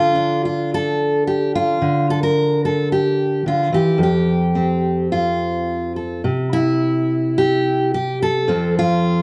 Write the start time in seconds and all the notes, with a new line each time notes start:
Already playing: D3 D4 F4
0.15 D4
0.45 F4
0.74 A4
1.27 G4
1.55 F4
1.82 D3
2.10 A4
2.23 A#4
2.65 A4
2.92 G4
3.46 D3 F4
3.72 E3 G4
3.98 F2
4.03 G4
4.55 C4
5.12 F4
5.96 A4
6.24 C3
6.53 E4
7.38 G4
7.94 G4
8.22 A4
8.48 F2 F3 C4
8.79 F4